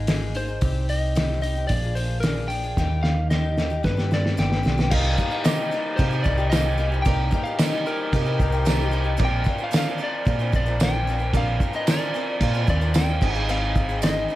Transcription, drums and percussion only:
0.07 snare loud
0.07 open hi-hat medium
0.35 open hi-hat soft
0.61 kick medium
0.61 open hi-hat medium
0.89 open hi-hat soft
1.16 snare loud
1.16 open hi-hat medium
1.30 snare soft
1.43 open hi-hat soft
1.69 kick medium
1.69 open hi-hat medium
1.97 open hi-hat soft
2.23 snare medium
2.23 open hi-hat medium
2.50 open hi-hat soft
2.77 kick loud
2.77 snare soft
3.04 snare medium
3.31 snare medium
3.58 snare medium
3.84 kick loud
3.84 snare medium
3.98 snare medium
4.12 snare medium
4.26 snare medium
4.39 snare medium
4.52 snare medium
4.66 snare medium
4.79 snare medium
4.91 kick loud
4.91 crash loud
4.91 crash medium
5.19 kick medium
5.45 snare loud
5.45 tambourine loud
5.45 crash medium
5.99 kick loud
5.99 crash medium
6.26 kick loud
6.52 snare loud
6.52 tambourine medium
6.52 crash medium
7.06 kick loud
7.06 crash medium
7.32 kick medium
7.58 snare loud
7.58 tambourine loud
7.58 crash medium
8.13 kick loud
8.13 crash medium
8.40 kick medium
8.66 snare loud
8.66 tambourine medium
8.66 crash medium
9.19 kick loud
9.19 crash medium
9.47 kick medium
9.73 snare loud
9.73 tambourine medium
9.73 crash medium
10.27 kick loud
10.27 crash medium
10.53 kick medium
10.80 snare loud
10.80 tambourine medium
10.80 crash medium
11.33 kick loud
11.33 crash medium
11.60 kick medium
11.87 snare loud
11.87 tambourine medium
11.87 crash medium
12.41 kick loud
12.41 crash medium
12.68 kick medium
12.94 snare loud
12.94 tambourine medium
12.94 crash medium
13.22 kick medium
13.22 crash medium
13.49 crash medium
13.76 kick medium
14.02 snare loud
14.02 tambourine medium
14.02 crash medium

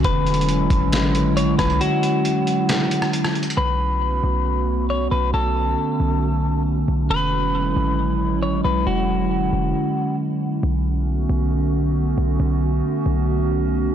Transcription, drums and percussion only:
0.04 kick loud
0.04 closed hi-hat medium
0.27 closed hi-hat medium
0.34 closed hi-hat medium
0.41 closed hi-hat medium
0.49 closed hi-hat medium
0.70 kick medium
0.70 closed hi-hat medium
0.93 snare loud
0.93 closed hi-hat medium
1.15 closed hi-hat medium
1.37 closed hi-hat medium
1.59 kick loud
1.59 cross-stick medium
1.59 closed hi-hat medium
1.70 closed hi-hat soft
1.81 closed hi-hat medium
2.03 closed hi-hat medium
2.25 closed hi-hat medium
2.47 closed hi-hat medium
2.69 snare loud
2.69 closed hi-hat medium
2.91 closed hi-hat medium
3.02 cross-stick medium
3.13 closed hi-hat medium
3.25 cross-stick loud
3.35 closed hi-hat soft
3.43 closed hi-hat medium
3.50 closed hi-hat medium

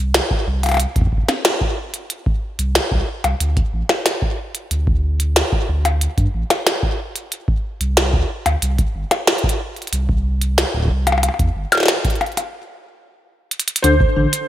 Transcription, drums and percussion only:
0.14 snare loud
0.14 closed hi-hat medium
0.31 kick loud
0.63 closed hi-hat medium
0.63 percussion blips soft
0.66 closed hi-hat soft
0.66 percussion blips soft
0.69 closed hi-hat soft
0.69 percussion blips soft
0.72 closed hi-hat soft
0.72 percussion blips medium
0.74 closed hi-hat soft
0.74 percussion blips medium
0.77 closed hi-hat medium
0.77 percussion blips medium
0.96 kick loud
0.96 closed hi-hat soft
1.01 kick medium
1.07 kick medium
1.12 kick medium
1.18 kick medium
1.23 kick soft
1.29 snare medium
1.29 closed hi-hat soft
1.29 percussion blips medium
1.45 snare loud
1.45 closed hi-hat medium
1.61 kick loud
1.94 closed hi-hat medium
2.10 closed hi-hat medium
2.26 kick loud
2.59 closed hi-hat soft
2.75 snare loud
2.75 closed hi-hat medium
2.92 kick loud
3.24 closed hi-hat soft
3.24 percussion blips medium
3.40 closed hi-hat medium
3.57 kick loud
3.57 closed hi-hat soft
3.89 snare medium
3.89 percussion blips medium
4.06 snare loud
4.06 closed hi-hat medium
4.22 kick loud
4.55 closed hi-hat medium
4.71 closed hi-hat medium
4.87 kick loud
5.20 closed hi-hat soft
5.36 snare loud
5.36 closed hi-hat medium
5.52 kick loud
5.85 closed hi-hat medium
5.85 percussion blips medium
6.01 closed hi-hat medium
6.18 kick medium
6.18 closed hi-hat soft
6.50 snare medium
6.50 closed hi-hat soft
6.50 percussion blips medium
6.67 snare loud
6.67 closed hi-hat medium
6.83 kick loud
7.16 closed hi-hat soft
7.32 closed hi-hat medium
7.48 kick loud
7.81 closed hi-hat soft
7.97 snare loud
7.97 closed hi-hat medium
8.13 kick loud
8.46 closed hi-hat soft
8.46 percussion blips medium
8.62 closed hi-hat medium
8.78 kick loud
8.78 closed hi-hat soft
9.11 snare medium
9.11 closed hi-hat soft
9.11 percussion blips medium
9.27 snare loud
9.27 closed hi-hat soft
9.38 closed hi-hat soft
9.44 kick loud
9.49 closed hi-hat soft
9.76 closed hi-hat soft
9.82 closed hi-hat soft
9.87 closed hi-hat soft
9.93 closed hi-hat medium
10.09 kick loud
10.41 closed hi-hat soft
10.58 snare loud
10.58 closed hi-hat medium
10.74 kick soft
10.77 kick medium
10.80 kick medium
10.82 kick medium
10.85 kick medium
10.88 kick loud
11.07 closed hi-hat soft
11.07 percussion blips medium
11.12 percussion blips medium
11.18 percussion blips medium
11.23 closed hi-hat medium
11.23 percussion blips soft
11.29 percussion blips soft
11.34 percussion blips soft
11.39 kick loud
11.39 closed hi-hat soft
11.72 snare soft
11.72 closed hi-hat medium
11.72 percussion blips medium
11.75 snare soft
11.78 snare soft
11.80 snare soft
11.83 snare soft
11.86 snare soft
11.88 snare loud
11.88 closed hi-hat medium
12.05 kick loud
12.05 closed hi-hat soft
12.10 closed hi-hat soft
12.16 closed hi-hat soft
12.21 closed hi-hat soft
12.21 percussion blips medium
12.26 closed hi-hat soft
12.32 closed hi-hat soft
12.37 closed hi-hat medium
12.37 percussion blips soft
13.51 closed hi-hat medium
13.60 closed hi-hat medium
13.68 closed hi-hat medium
13.76 closed hi-hat medium
13.84 closed hi-hat medium
14.00 kick loud
14.33 closed hi-hat medium

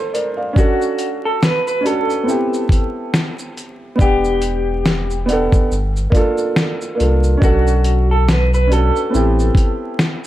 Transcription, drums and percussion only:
0.15 closed hi-hat medium
0.15 shaker soft
0.56 kick loud
0.56 shaker medium
0.82 shaker soft
0.99 closed hi-hat medium
0.99 shaker medium
1.43 snare loud
1.43 shaker medium
1.67 shaker medium
1.86 closed hi-hat medium
1.86 shaker soft
2.10 shaker soft
2.29 shaker medium
2.54 shaker soft
2.69 kick medium
2.69 closed hi-hat medium
2.69 shaker soft
3.14 snare loud
3.14 shaker medium
3.39 shaker medium
3.57 closed hi-hat medium
3.57 shaker soft
3.99 kick loud
3.99 shaker medium
4.24 shaker soft
4.42 closed hi-hat medium
4.42 shaker medium
4.86 snare loud
4.86 shaker medium
5.10 shaker soft
5.29 closed hi-hat medium
5.29 shaker soft
5.52 kick medium
5.52 shaker soft
5.72 shaker medium
5.97 shaker soft
6.12 kick medium
6.12 closed hi-hat medium
6.12 shaker soft
6.38 shaker soft
6.56 snare loud
6.56 shaker medium
6.81 shaker soft
7.00 closed hi-hat medium
7.00 shaker soft
7.23 shaker soft
7.42 kick loud
7.42 shaker medium
7.67 shaker medium
7.84 closed hi-hat medium
7.84 shaker medium
8.29 snare loud
8.29 shaker medium
8.54 shaker soft
8.72 closed hi-hat medium
8.72 shaker soft
8.96 shaker soft
9.14 shaker medium
9.39 shaker soft
9.55 kick medium
9.55 closed hi-hat medium
9.55 shaker soft
9.99 snare loud
9.99 shaker medium

